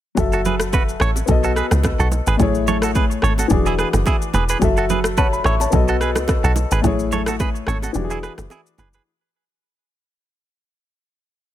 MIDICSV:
0, 0, Header, 1, 5, 480
1, 0, Start_track
1, 0, Key_signature, 3, "minor"
1, 0, Tempo, 555556
1, 150, Time_signature, 4, 2, 24, 8
1, 9971, End_track
2, 0, Start_track
2, 0, Title_t, "Clean electric guitar"
2, 0, Program_c, 0, 27
2, 289, Note_on_c, 0, 69, 78
2, 296, Note_on_c, 0, 66, 60
2, 348, Note_off_c, 0, 69, 0
2, 353, Note_off_c, 0, 66, 0
2, 397, Note_on_c, 0, 71, 79
2, 404, Note_on_c, 0, 68, 62
2, 469, Note_off_c, 0, 71, 0
2, 474, Note_off_c, 0, 68, 0
2, 638, Note_on_c, 0, 71, 78
2, 645, Note_on_c, 0, 66, 61
2, 710, Note_off_c, 0, 71, 0
2, 715, Note_off_c, 0, 66, 0
2, 876, Note_on_c, 0, 73, 80
2, 884, Note_on_c, 0, 69, 59
2, 949, Note_off_c, 0, 73, 0
2, 954, Note_off_c, 0, 69, 0
2, 1248, Note_on_c, 0, 69, 77
2, 1255, Note_on_c, 0, 66, 57
2, 1307, Note_off_c, 0, 69, 0
2, 1312, Note_off_c, 0, 66, 0
2, 1356, Note_on_c, 0, 71, 80
2, 1363, Note_on_c, 0, 68, 60
2, 1429, Note_off_c, 0, 71, 0
2, 1433, Note_off_c, 0, 68, 0
2, 1728, Note_on_c, 0, 69, 75
2, 1735, Note_on_c, 0, 66, 59
2, 1787, Note_off_c, 0, 69, 0
2, 1792, Note_off_c, 0, 66, 0
2, 1968, Note_on_c, 0, 71, 69
2, 1975, Note_on_c, 0, 68, 56
2, 2027, Note_off_c, 0, 71, 0
2, 2032, Note_off_c, 0, 68, 0
2, 2316, Note_on_c, 0, 73, 79
2, 2323, Note_on_c, 0, 69, 60
2, 2388, Note_off_c, 0, 73, 0
2, 2393, Note_off_c, 0, 69, 0
2, 2449, Note_on_c, 0, 69, 76
2, 2455, Note_on_c, 0, 66, 59
2, 2507, Note_off_c, 0, 69, 0
2, 2512, Note_off_c, 0, 66, 0
2, 2556, Note_on_c, 0, 71, 83
2, 2563, Note_on_c, 0, 68, 62
2, 2629, Note_off_c, 0, 71, 0
2, 2634, Note_off_c, 0, 68, 0
2, 2796, Note_on_c, 0, 73, 76
2, 2803, Note_on_c, 0, 69, 62
2, 2869, Note_off_c, 0, 73, 0
2, 2874, Note_off_c, 0, 69, 0
2, 2928, Note_on_c, 0, 69, 68
2, 2935, Note_on_c, 0, 66, 51
2, 2987, Note_off_c, 0, 69, 0
2, 2992, Note_off_c, 0, 66, 0
2, 3166, Note_on_c, 0, 68, 79
2, 3173, Note_on_c, 0, 64, 62
2, 3226, Note_off_c, 0, 68, 0
2, 3231, Note_off_c, 0, 64, 0
2, 3274, Note_on_c, 0, 71, 80
2, 3281, Note_on_c, 0, 68, 64
2, 3347, Note_off_c, 0, 71, 0
2, 3352, Note_off_c, 0, 68, 0
2, 3514, Note_on_c, 0, 68, 76
2, 3521, Note_on_c, 0, 64, 59
2, 3587, Note_off_c, 0, 68, 0
2, 3592, Note_off_c, 0, 64, 0
2, 3754, Note_on_c, 0, 71, 70
2, 3761, Note_on_c, 0, 68, 55
2, 3827, Note_off_c, 0, 71, 0
2, 3832, Note_off_c, 0, 68, 0
2, 3885, Note_on_c, 0, 71, 79
2, 3893, Note_on_c, 0, 68, 63
2, 3945, Note_off_c, 0, 71, 0
2, 3950, Note_off_c, 0, 68, 0
2, 4127, Note_on_c, 0, 69, 82
2, 4134, Note_on_c, 0, 66, 63
2, 4187, Note_off_c, 0, 69, 0
2, 4192, Note_off_c, 0, 66, 0
2, 4235, Note_on_c, 0, 71, 82
2, 4242, Note_on_c, 0, 68, 64
2, 4308, Note_off_c, 0, 71, 0
2, 4313, Note_off_c, 0, 68, 0
2, 4476, Note_on_c, 0, 71, 82
2, 4482, Note_on_c, 0, 66, 62
2, 4548, Note_off_c, 0, 71, 0
2, 4553, Note_off_c, 0, 66, 0
2, 4715, Note_on_c, 0, 73, 76
2, 4722, Note_on_c, 0, 69, 59
2, 4788, Note_off_c, 0, 73, 0
2, 4793, Note_off_c, 0, 69, 0
2, 5088, Note_on_c, 0, 69, 75
2, 5094, Note_on_c, 0, 66, 60
2, 5147, Note_off_c, 0, 69, 0
2, 5152, Note_off_c, 0, 66, 0
2, 5196, Note_on_c, 0, 71, 80
2, 5204, Note_on_c, 0, 68, 60
2, 5269, Note_off_c, 0, 71, 0
2, 5274, Note_off_c, 0, 68, 0
2, 5569, Note_on_c, 0, 69, 76
2, 5576, Note_on_c, 0, 66, 58
2, 5628, Note_off_c, 0, 69, 0
2, 5633, Note_off_c, 0, 66, 0
2, 5810, Note_on_c, 0, 71, 71
2, 5817, Note_on_c, 0, 68, 57
2, 5869, Note_off_c, 0, 71, 0
2, 5873, Note_off_c, 0, 68, 0
2, 6157, Note_on_c, 0, 73, 78
2, 6163, Note_on_c, 0, 69, 60
2, 6229, Note_off_c, 0, 73, 0
2, 6234, Note_off_c, 0, 69, 0
2, 6289, Note_on_c, 0, 69, 76
2, 6296, Note_on_c, 0, 66, 60
2, 6348, Note_off_c, 0, 69, 0
2, 6353, Note_off_c, 0, 66, 0
2, 6397, Note_on_c, 0, 71, 82
2, 6403, Note_on_c, 0, 68, 63
2, 6469, Note_off_c, 0, 71, 0
2, 6474, Note_off_c, 0, 68, 0
2, 6637, Note_on_c, 0, 73, 79
2, 6644, Note_on_c, 0, 69, 61
2, 6709, Note_off_c, 0, 73, 0
2, 6714, Note_off_c, 0, 69, 0
2, 6767, Note_on_c, 0, 69, 66
2, 6774, Note_on_c, 0, 66, 50
2, 6827, Note_off_c, 0, 69, 0
2, 6831, Note_off_c, 0, 66, 0
2, 7008, Note_on_c, 0, 68, 84
2, 7014, Note_on_c, 0, 64, 63
2, 7067, Note_off_c, 0, 68, 0
2, 7072, Note_off_c, 0, 64, 0
2, 7115, Note_on_c, 0, 71, 78
2, 7122, Note_on_c, 0, 68, 61
2, 7188, Note_off_c, 0, 71, 0
2, 7193, Note_off_c, 0, 68, 0
2, 7356, Note_on_c, 0, 68, 74
2, 7362, Note_on_c, 0, 64, 59
2, 7428, Note_off_c, 0, 68, 0
2, 7433, Note_off_c, 0, 64, 0
2, 7597, Note_on_c, 0, 71, 69
2, 7604, Note_on_c, 0, 68, 53
2, 7669, Note_off_c, 0, 71, 0
2, 7674, Note_off_c, 0, 68, 0
2, 7728, Note_on_c, 0, 71, 79
2, 7735, Note_on_c, 0, 68, 61
2, 7787, Note_off_c, 0, 71, 0
2, 7792, Note_off_c, 0, 68, 0
2, 9971, End_track
3, 0, Start_track
3, 0, Title_t, "Grand piano"
3, 0, Program_c, 1, 0
3, 128, Note_on_c, 1, 54, 75
3, 143, Note_on_c, 1, 66, 66
3, 157, Note_on_c, 1, 69, 66
3, 171, Note_on_c, 1, 76, 80
3, 293, Control_c, 1, 64, 127
3, 1080, Note_off_c, 1, 54, 0
3, 1087, Note_off_c, 1, 66, 0
3, 1088, Note_on_c, 1, 59, 74
3, 1095, Note_off_c, 1, 69, 0
3, 1102, Note_off_c, 1, 76, 0
3, 1102, Note_on_c, 1, 66, 70
3, 1117, Note_on_c, 1, 69, 66
3, 1121, Control_c, 1, 64, 0
3, 1131, Note_on_c, 1, 75, 86
3, 1298, Control_c, 1, 64, 127
3, 2040, Note_off_c, 1, 59, 0
3, 2047, Note_off_c, 1, 66, 0
3, 2048, Note_on_c, 1, 57, 76
3, 2055, Note_off_c, 1, 69, 0
3, 2062, Note_off_c, 1, 75, 0
3, 2062, Note_on_c, 1, 64, 68
3, 2076, Note_on_c, 1, 68, 67
3, 2080, Control_c, 1, 64, 0
3, 2090, Note_on_c, 1, 73, 83
3, 2215, Control_c, 1, 64, 127
3, 3000, Note_off_c, 1, 57, 0
3, 3007, Note_off_c, 1, 64, 0
3, 3007, Note_on_c, 1, 52, 75
3, 3014, Note_off_c, 1, 68, 0
3, 3021, Note_off_c, 1, 73, 0
3, 3021, Note_on_c, 1, 62, 70
3, 3036, Note_on_c, 1, 66, 68
3, 3043, Control_c, 1, 64, 0
3, 3050, Note_on_c, 1, 68, 85
3, 3168, Control_c, 1, 64, 127
3, 3959, Note_off_c, 1, 52, 0
3, 3967, Note_off_c, 1, 62, 0
3, 3968, Note_on_c, 1, 54, 73
3, 3970, Note_off_c, 1, 66, 0
3, 3981, Note_off_c, 1, 68, 0
3, 3983, Note_on_c, 1, 66, 68
3, 3997, Note_on_c, 1, 69, 69
3, 4003, Control_c, 1, 64, 0
3, 4011, Note_on_c, 1, 76, 84
3, 4163, Control_c, 1, 64, 127
3, 4471, Note_off_c, 1, 76, 0
3, 4471, Note_on_c, 1, 81, 66
3, 4475, Note_on_c, 1, 73, 56
3, 4596, Note_off_c, 1, 81, 0
3, 4598, Note_off_c, 1, 73, 0
3, 4603, Note_on_c, 1, 83, 72
3, 4705, Note_off_c, 1, 83, 0
3, 4710, Note_on_c, 1, 85, 70
3, 4716, Note_on_c, 1, 76, 57
3, 4836, Note_off_c, 1, 85, 0
3, 4839, Note_off_c, 1, 76, 0
3, 4843, Note_on_c, 1, 81, 66
3, 4848, Note_on_c, 1, 73, 55
3, 4920, Note_off_c, 1, 54, 0
3, 4927, Note_off_c, 1, 66, 0
3, 4927, Note_on_c, 1, 59, 75
3, 4935, Note_off_c, 1, 69, 0
3, 4941, Note_on_c, 1, 66, 70
3, 4955, Note_on_c, 1, 69, 71
3, 4963, Control_c, 1, 64, 0
3, 4971, Note_on_c, 1, 75, 82
3, 5071, Note_off_c, 1, 81, 0
3, 5074, Note_off_c, 1, 73, 0
3, 5127, Control_c, 1, 64, 127
3, 5880, Note_off_c, 1, 59, 0
3, 5887, Note_off_c, 1, 66, 0
3, 5887, Note_on_c, 1, 57, 73
3, 5894, Note_off_c, 1, 69, 0
3, 5902, Note_off_c, 1, 75, 0
3, 5902, Note_on_c, 1, 64, 66
3, 5916, Note_on_c, 1, 68, 68
3, 5921, Control_c, 1, 64, 0
3, 5931, Note_on_c, 1, 73, 83
3, 6095, Control_c, 1, 64, 127
3, 6839, Note_off_c, 1, 57, 0
3, 6847, Note_off_c, 1, 64, 0
3, 6850, Note_on_c, 1, 52, 77
3, 6854, Note_off_c, 1, 68, 0
3, 6862, Note_off_c, 1, 73, 0
3, 6864, Note_on_c, 1, 62, 71
3, 6878, Note_on_c, 1, 66, 67
3, 6883, Control_c, 1, 64, 0
3, 6892, Note_on_c, 1, 67, 67
3, 6943, Note_off_c, 1, 67, 0
3, 6948, Note_on_c, 1, 68, 84
3, 7024, Control_c, 1, 64, 127
3, 7801, Note_off_c, 1, 52, 0
3, 7808, Note_off_c, 1, 62, 0
3, 7815, Note_off_c, 1, 66, 0
3, 7840, Control_c, 1, 64, 0
3, 7851, Note_off_c, 1, 68, 0
3, 9971, End_track
4, 0, Start_track
4, 0, Title_t, "Log drum bass"
4, 0, Program_c, 2, 39
4, 150, Note_on_c, 2, 30, 109
4, 836, Note_off_c, 2, 30, 0
4, 871, Note_on_c, 2, 33, 92
4, 1059, Note_off_c, 2, 33, 0
4, 1111, Note_on_c, 2, 35, 90
4, 1403, Note_off_c, 2, 35, 0
4, 1483, Note_on_c, 2, 37, 89
4, 1671, Note_off_c, 2, 37, 0
4, 1723, Note_on_c, 2, 35, 90
4, 1911, Note_off_c, 2, 35, 0
4, 1963, Note_on_c, 2, 32, 95
4, 2048, Note_off_c, 2, 32, 0
4, 2070, Note_on_c, 2, 33, 103
4, 2756, Note_off_c, 2, 33, 0
4, 2791, Note_on_c, 2, 32, 91
4, 2979, Note_off_c, 2, 32, 0
4, 3030, Note_on_c, 2, 28, 99
4, 3323, Note_off_c, 2, 28, 0
4, 3402, Note_on_c, 2, 30, 95
4, 3487, Note_off_c, 2, 30, 0
4, 3750, Note_on_c, 2, 28, 86
4, 3939, Note_off_c, 2, 28, 0
4, 3990, Note_on_c, 2, 30, 101
4, 4676, Note_off_c, 2, 30, 0
4, 4710, Note_on_c, 2, 33, 92
4, 4899, Note_off_c, 2, 33, 0
4, 4950, Note_on_c, 2, 35, 95
4, 5322, Note_on_c, 2, 37, 85
4, 5335, Note_off_c, 2, 35, 0
4, 5511, Note_off_c, 2, 37, 0
4, 5563, Note_on_c, 2, 35, 87
4, 5752, Note_off_c, 2, 35, 0
4, 5804, Note_on_c, 2, 32, 95
4, 5888, Note_off_c, 2, 32, 0
4, 5911, Note_on_c, 2, 33, 100
4, 6596, Note_off_c, 2, 33, 0
4, 6631, Note_on_c, 2, 32, 97
4, 6820, Note_off_c, 2, 32, 0
4, 6871, Note_on_c, 2, 28, 105
4, 7163, Note_off_c, 2, 28, 0
4, 7243, Note_on_c, 2, 30, 88
4, 7328, Note_off_c, 2, 30, 0
4, 7590, Note_on_c, 2, 30, 81
4, 7779, Note_off_c, 2, 30, 0
4, 9971, End_track
5, 0, Start_track
5, 0, Title_t, "Drums"
5, 150, Note_on_c, 9, 36, 111
5, 150, Note_on_c, 9, 82, 78
5, 152, Note_on_c, 9, 64, 77
5, 236, Note_off_c, 9, 82, 0
5, 237, Note_off_c, 9, 36, 0
5, 239, Note_off_c, 9, 64, 0
5, 280, Note_on_c, 9, 82, 47
5, 367, Note_off_c, 9, 82, 0
5, 390, Note_on_c, 9, 82, 51
5, 392, Note_on_c, 9, 61, 58
5, 392, Note_on_c, 9, 64, 82
5, 476, Note_off_c, 9, 82, 0
5, 479, Note_off_c, 9, 61, 0
5, 479, Note_off_c, 9, 64, 0
5, 515, Note_on_c, 9, 37, 113
5, 524, Note_on_c, 9, 82, 98
5, 601, Note_off_c, 9, 37, 0
5, 610, Note_off_c, 9, 82, 0
5, 630, Note_on_c, 9, 82, 75
5, 632, Note_on_c, 9, 36, 94
5, 634, Note_on_c, 9, 60, 69
5, 716, Note_off_c, 9, 82, 0
5, 718, Note_off_c, 9, 36, 0
5, 721, Note_off_c, 9, 60, 0
5, 768, Note_on_c, 9, 82, 45
5, 854, Note_off_c, 9, 82, 0
5, 863, Note_on_c, 9, 37, 96
5, 880, Note_on_c, 9, 82, 60
5, 949, Note_off_c, 9, 37, 0
5, 967, Note_off_c, 9, 82, 0
5, 1000, Note_on_c, 9, 60, 57
5, 1008, Note_on_c, 9, 82, 92
5, 1087, Note_off_c, 9, 60, 0
5, 1095, Note_off_c, 9, 82, 0
5, 1103, Note_on_c, 9, 82, 78
5, 1111, Note_on_c, 9, 36, 109
5, 1112, Note_on_c, 9, 64, 73
5, 1189, Note_off_c, 9, 82, 0
5, 1197, Note_off_c, 9, 36, 0
5, 1198, Note_off_c, 9, 64, 0
5, 1241, Note_on_c, 9, 82, 53
5, 1327, Note_off_c, 9, 82, 0
5, 1351, Note_on_c, 9, 37, 84
5, 1354, Note_on_c, 9, 82, 50
5, 1437, Note_off_c, 9, 37, 0
5, 1440, Note_off_c, 9, 82, 0
5, 1479, Note_on_c, 9, 37, 100
5, 1479, Note_on_c, 9, 61, 76
5, 1484, Note_on_c, 9, 82, 98
5, 1565, Note_off_c, 9, 37, 0
5, 1565, Note_off_c, 9, 61, 0
5, 1570, Note_off_c, 9, 82, 0
5, 1586, Note_on_c, 9, 60, 74
5, 1592, Note_on_c, 9, 82, 63
5, 1593, Note_on_c, 9, 36, 89
5, 1594, Note_on_c, 9, 37, 100
5, 1672, Note_off_c, 9, 60, 0
5, 1679, Note_off_c, 9, 36, 0
5, 1679, Note_off_c, 9, 82, 0
5, 1681, Note_off_c, 9, 37, 0
5, 1726, Note_on_c, 9, 82, 53
5, 1812, Note_off_c, 9, 82, 0
5, 1828, Note_on_c, 9, 61, 75
5, 1829, Note_on_c, 9, 82, 52
5, 1914, Note_off_c, 9, 61, 0
5, 1916, Note_off_c, 9, 82, 0
5, 1959, Note_on_c, 9, 82, 86
5, 2045, Note_off_c, 9, 82, 0
5, 2070, Note_on_c, 9, 36, 113
5, 2071, Note_on_c, 9, 82, 79
5, 2073, Note_on_c, 9, 64, 80
5, 2157, Note_off_c, 9, 36, 0
5, 2157, Note_off_c, 9, 82, 0
5, 2159, Note_off_c, 9, 64, 0
5, 2201, Note_on_c, 9, 82, 44
5, 2287, Note_off_c, 9, 82, 0
5, 2310, Note_on_c, 9, 82, 51
5, 2313, Note_on_c, 9, 61, 60
5, 2313, Note_on_c, 9, 64, 78
5, 2396, Note_off_c, 9, 82, 0
5, 2400, Note_off_c, 9, 61, 0
5, 2400, Note_off_c, 9, 64, 0
5, 2436, Note_on_c, 9, 37, 113
5, 2445, Note_on_c, 9, 82, 99
5, 2522, Note_off_c, 9, 37, 0
5, 2531, Note_off_c, 9, 82, 0
5, 2550, Note_on_c, 9, 82, 73
5, 2552, Note_on_c, 9, 36, 91
5, 2554, Note_on_c, 9, 60, 70
5, 2637, Note_off_c, 9, 82, 0
5, 2638, Note_off_c, 9, 36, 0
5, 2641, Note_off_c, 9, 60, 0
5, 2688, Note_on_c, 9, 82, 47
5, 2774, Note_off_c, 9, 82, 0
5, 2783, Note_on_c, 9, 37, 90
5, 2800, Note_on_c, 9, 82, 59
5, 2869, Note_off_c, 9, 37, 0
5, 2887, Note_off_c, 9, 82, 0
5, 2920, Note_on_c, 9, 60, 56
5, 2929, Note_on_c, 9, 82, 96
5, 3006, Note_off_c, 9, 60, 0
5, 3015, Note_off_c, 9, 82, 0
5, 3023, Note_on_c, 9, 82, 78
5, 3031, Note_on_c, 9, 36, 111
5, 3032, Note_on_c, 9, 64, 75
5, 3109, Note_off_c, 9, 82, 0
5, 3117, Note_off_c, 9, 36, 0
5, 3118, Note_off_c, 9, 64, 0
5, 3162, Note_on_c, 9, 82, 50
5, 3248, Note_off_c, 9, 82, 0
5, 3270, Note_on_c, 9, 37, 86
5, 3274, Note_on_c, 9, 82, 50
5, 3357, Note_off_c, 9, 37, 0
5, 3360, Note_off_c, 9, 82, 0
5, 3399, Note_on_c, 9, 37, 100
5, 3399, Note_on_c, 9, 61, 74
5, 3404, Note_on_c, 9, 82, 92
5, 3485, Note_off_c, 9, 37, 0
5, 3485, Note_off_c, 9, 61, 0
5, 3490, Note_off_c, 9, 82, 0
5, 3504, Note_on_c, 9, 60, 75
5, 3511, Note_on_c, 9, 82, 62
5, 3512, Note_on_c, 9, 36, 93
5, 3591, Note_off_c, 9, 60, 0
5, 3598, Note_off_c, 9, 82, 0
5, 3599, Note_off_c, 9, 36, 0
5, 3646, Note_on_c, 9, 82, 55
5, 3732, Note_off_c, 9, 82, 0
5, 3747, Note_on_c, 9, 61, 76
5, 3749, Note_on_c, 9, 82, 51
5, 3833, Note_off_c, 9, 61, 0
5, 3835, Note_off_c, 9, 82, 0
5, 3879, Note_on_c, 9, 82, 89
5, 3965, Note_off_c, 9, 82, 0
5, 3990, Note_on_c, 9, 36, 110
5, 3990, Note_on_c, 9, 82, 79
5, 3992, Note_on_c, 9, 64, 78
5, 4077, Note_off_c, 9, 36, 0
5, 4077, Note_off_c, 9, 82, 0
5, 4078, Note_off_c, 9, 64, 0
5, 4121, Note_on_c, 9, 82, 46
5, 4207, Note_off_c, 9, 82, 0
5, 4230, Note_on_c, 9, 82, 55
5, 4233, Note_on_c, 9, 61, 58
5, 4233, Note_on_c, 9, 64, 82
5, 4316, Note_off_c, 9, 82, 0
5, 4319, Note_off_c, 9, 61, 0
5, 4319, Note_off_c, 9, 64, 0
5, 4355, Note_on_c, 9, 37, 118
5, 4364, Note_on_c, 9, 82, 98
5, 4442, Note_off_c, 9, 37, 0
5, 4451, Note_off_c, 9, 82, 0
5, 4470, Note_on_c, 9, 82, 74
5, 4471, Note_on_c, 9, 36, 93
5, 4474, Note_on_c, 9, 60, 74
5, 4556, Note_off_c, 9, 82, 0
5, 4558, Note_off_c, 9, 36, 0
5, 4561, Note_off_c, 9, 60, 0
5, 4609, Note_on_c, 9, 82, 44
5, 4695, Note_off_c, 9, 82, 0
5, 4703, Note_on_c, 9, 37, 96
5, 4721, Note_on_c, 9, 82, 59
5, 4790, Note_off_c, 9, 37, 0
5, 4807, Note_off_c, 9, 82, 0
5, 4838, Note_on_c, 9, 60, 56
5, 4848, Note_on_c, 9, 82, 94
5, 4925, Note_off_c, 9, 60, 0
5, 4934, Note_off_c, 9, 82, 0
5, 4943, Note_on_c, 9, 82, 80
5, 4950, Note_on_c, 9, 36, 113
5, 4950, Note_on_c, 9, 64, 73
5, 5030, Note_off_c, 9, 82, 0
5, 5036, Note_off_c, 9, 64, 0
5, 5037, Note_off_c, 9, 36, 0
5, 5081, Note_on_c, 9, 82, 50
5, 5167, Note_off_c, 9, 82, 0
5, 5191, Note_on_c, 9, 37, 84
5, 5194, Note_on_c, 9, 82, 50
5, 5277, Note_off_c, 9, 37, 0
5, 5281, Note_off_c, 9, 82, 0
5, 5317, Note_on_c, 9, 61, 76
5, 5319, Note_on_c, 9, 37, 98
5, 5324, Note_on_c, 9, 82, 92
5, 5404, Note_off_c, 9, 61, 0
5, 5405, Note_off_c, 9, 37, 0
5, 5410, Note_off_c, 9, 82, 0
5, 5423, Note_on_c, 9, 60, 76
5, 5432, Note_on_c, 9, 82, 62
5, 5433, Note_on_c, 9, 36, 89
5, 5434, Note_on_c, 9, 37, 99
5, 5510, Note_off_c, 9, 60, 0
5, 5518, Note_off_c, 9, 82, 0
5, 5519, Note_off_c, 9, 36, 0
5, 5520, Note_off_c, 9, 37, 0
5, 5566, Note_on_c, 9, 82, 57
5, 5652, Note_off_c, 9, 82, 0
5, 5665, Note_on_c, 9, 61, 74
5, 5669, Note_on_c, 9, 82, 54
5, 5752, Note_off_c, 9, 61, 0
5, 5756, Note_off_c, 9, 82, 0
5, 5800, Note_on_c, 9, 82, 87
5, 5887, Note_off_c, 9, 82, 0
5, 5911, Note_on_c, 9, 36, 107
5, 5911, Note_on_c, 9, 64, 78
5, 5911, Note_on_c, 9, 82, 83
5, 5997, Note_off_c, 9, 36, 0
5, 5997, Note_off_c, 9, 64, 0
5, 5997, Note_off_c, 9, 82, 0
5, 6042, Note_on_c, 9, 82, 48
5, 6128, Note_off_c, 9, 82, 0
5, 6150, Note_on_c, 9, 82, 52
5, 6152, Note_on_c, 9, 61, 58
5, 6152, Note_on_c, 9, 64, 79
5, 6237, Note_off_c, 9, 82, 0
5, 6238, Note_off_c, 9, 61, 0
5, 6238, Note_off_c, 9, 64, 0
5, 6276, Note_on_c, 9, 37, 110
5, 6285, Note_on_c, 9, 82, 98
5, 6291, Note_on_c, 9, 61, 68
5, 6362, Note_off_c, 9, 37, 0
5, 6371, Note_off_c, 9, 82, 0
5, 6378, Note_off_c, 9, 61, 0
5, 6391, Note_on_c, 9, 82, 75
5, 6392, Note_on_c, 9, 36, 95
5, 6394, Note_on_c, 9, 60, 72
5, 6477, Note_off_c, 9, 82, 0
5, 6478, Note_off_c, 9, 36, 0
5, 6480, Note_off_c, 9, 60, 0
5, 6528, Note_on_c, 9, 82, 44
5, 6615, Note_off_c, 9, 82, 0
5, 6623, Note_on_c, 9, 37, 93
5, 6638, Note_on_c, 9, 60, 58
5, 6641, Note_on_c, 9, 82, 58
5, 6710, Note_off_c, 9, 37, 0
5, 6724, Note_off_c, 9, 60, 0
5, 6727, Note_off_c, 9, 82, 0
5, 6760, Note_on_c, 9, 60, 58
5, 6769, Note_on_c, 9, 82, 90
5, 6847, Note_off_c, 9, 60, 0
5, 6856, Note_off_c, 9, 82, 0
5, 6863, Note_on_c, 9, 82, 81
5, 6872, Note_on_c, 9, 64, 75
5, 6949, Note_off_c, 9, 82, 0
5, 6959, Note_off_c, 9, 64, 0
5, 7001, Note_on_c, 9, 82, 51
5, 7088, Note_off_c, 9, 82, 0
5, 7112, Note_on_c, 9, 37, 83
5, 7115, Note_on_c, 9, 82, 49
5, 7198, Note_off_c, 9, 37, 0
5, 7202, Note_off_c, 9, 82, 0
5, 7239, Note_on_c, 9, 37, 100
5, 7239, Note_on_c, 9, 61, 75
5, 7244, Note_on_c, 9, 82, 98
5, 7326, Note_off_c, 9, 37, 0
5, 7326, Note_off_c, 9, 61, 0
5, 7331, Note_off_c, 9, 82, 0
5, 7345, Note_on_c, 9, 60, 77
5, 7352, Note_on_c, 9, 82, 61
5, 7432, Note_off_c, 9, 60, 0
5, 7438, Note_off_c, 9, 82, 0
5, 7486, Note_on_c, 9, 82, 55
5, 7572, Note_off_c, 9, 82, 0
5, 7587, Note_on_c, 9, 61, 78
5, 7589, Note_on_c, 9, 82, 52
5, 7674, Note_off_c, 9, 61, 0
5, 7675, Note_off_c, 9, 82, 0
5, 7719, Note_on_c, 9, 82, 83
5, 7805, Note_off_c, 9, 82, 0
5, 9971, End_track
0, 0, End_of_file